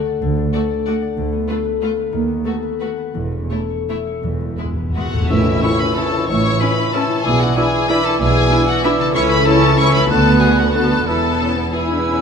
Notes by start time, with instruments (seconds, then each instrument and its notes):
Already playing: harp D3 D4 A4 F#5
0.07 harp D5
0.22 double bass section D2, cello section D2, harp D3
0.37 harp D4
0.53 viola section A3, violin section F#4 D5, harp A4
0.70 harp D5
0.86 viola section A3, violin section F#4 D5, harp F#5
1.02 harp D5
1.17 cello section D2, double bass section D2, harp D3
1.32 harp B3
1.48 viola section A3, violin section F4 B4, harp A4
1.65 harp B4
1.81 viola section A3, violin section F4 B4, harp F5
1.97 harp B4
2.13 double bass section D#2, cello section D#2, harp D#3
2.28 harp B3
2.45 viola section A3, violin section F#4 B4, harp A4
2.63 harp B4
2.81 viola section A3, violin section F#4 B4, harp F#5
2.97 harp B4
3.14 double bass section E1, cello section E2, harp E3
3.32 harp C#4
3.51 viola section A3, violin section E4 C#5, harp A4
3.70 harp C#5
3.89 viola section A3, violin section E4 C#5, harp E5
4.07 harp C#5
4.23 double bass section E1, timpani E2, cello section E2, harp E3
4.31 timpani E2
4.40 timpani E2, harp B3
4.48 timpani E2
4.56 timpani E2, viola section G#3, violin section E4 B4, harp G#4
4.65 timpani E2
4.73 timpani E2, harp B4
4.81 timpani E2
4.90 timpani E2
4.95 timpani E2, viola section G#3, violin section E4 F#4 B4 F#5, harp E5
5.06 timpani E2
5.12 timpani E2, harp A2 B4
5.16 harp A3
5.21 timpani E2, harp C#4
5.25 harp E4
5.29 double bass section A1, cello section A2, bassoon E3, clarinet E4, violin section E4 E5, cor anglais C#5, flute E6, tam-tam
5.62 bassoon E3, french horn section C#4 E4, viola section C#4 E4, clarinet E4, cor anglais C#5, violin section C#5 C#6, flute E6
5.79 violin section B4 B5
5.96 bassoon E3, french horn section C#4 E4, viola section C#4 E4, clarinet E4, violin section A4 A5, cor anglais C#5, flute E6
6.28 double bass section A1, cello section A2, bassoon E3, clarinet E4, violin section C#5 C#6, cor anglais C#5, flute E6
6.60 french horn section C#4 E4, viola section C#4 E4, violin section B4 B5
6.93 bassoon E3, viola section C#4 E4, french horn section C#4 E4, clarinet E4, violin section A4 A5, cor anglais C#5, flute E6
7.07 harp B2
7.12 harp D4
7.16 harp E4
7.24 double bass section B1, cello section B2, bassoon E3, clarinet E4, violin section G#4 G#5, cor anglais D5, flute E6
7.40 violin section F#4 F#5
7.56 bassoon E3, french horn section D4 E4, viola section D4 E4, clarinet E4, violin section G#4 G#5, cor anglais D5, flute E6
7.88 bassoon E3, french horn section D4 E4, viola section D4 E4, clarinet E4, violin section B4 B5, cor anglais D5, flute E6
8.04 violin section A4 A5
8.19 double bass section B1, cello section B2, bassoon E3, clarinet E4, violin section G#4 G#5, cor anglais D5, flute E6
8.52 viola section D4 E4, french horn section D4 E4
8.67 violin section F#4 F#5
8.83 bassoon E3, viola section D4 E4, french horn section D4 E4, violin section E4 E5, clarinet E4, cor anglais D5, flute E6
8.97 harp C#3, violin section A4 A5
9.02 harp C#4
9.06 harp E4
9.11 harp A4, violin section C#5
9.15 double bass section C#2, cello section C#2, bassoon E3, viola section C#4 E4, clarinet E4, cor anglais C#5, violin section C#6, flute E6
9.30 violin section B4 B5
9.46 bassoon E3, french horn section C#4 E4, viola section C#4 E4, clarinet E4, violin section A4 A5, cor anglais C#5, flute E6
9.77 bassoon E3, french horn section C#4 E4, viola section C#4 E4, clarinet E4, cor anglais C#5, violin section C#5 C#6, flute E6
9.91 harp D3, violin section B4 B5
9.96 harp B3
10.00 harp F#4
10.05 harp B4
10.09 cello section D2, double bass section D2, bassoon D3, clarinet B3, viola section B3 F#4, violin section A4 A5, cor anglais B4, flute F#6
10.40 french horn section B3 F#4, violin section G#4 G#5
10.57 violin section F#4 F#5
10.74 bassoon D3, clarinet B3, french horn section B3 F#4, viola section B3 F#4, violin section A4 A5, cor anglais B4, flute F#6
10.89 harp E3
10.94 harp B3
10.98 harp E4
11.02 clarinet E4, harp B4
11.06 double bass section E1, cello section E2, bassoon E3, viola section B3 E4, violin section A4 A5, cor anglais B4, flute E6
11.39 french horn section C#4
11.57 french horn section B3
11.73 bassoon E3, viola section B3 E4, french horn section E4, clarinet E4, violin section G#4 G#5, cor anglais B4, flute E6
11.91 french horn section D4
12.07 french horn section C#4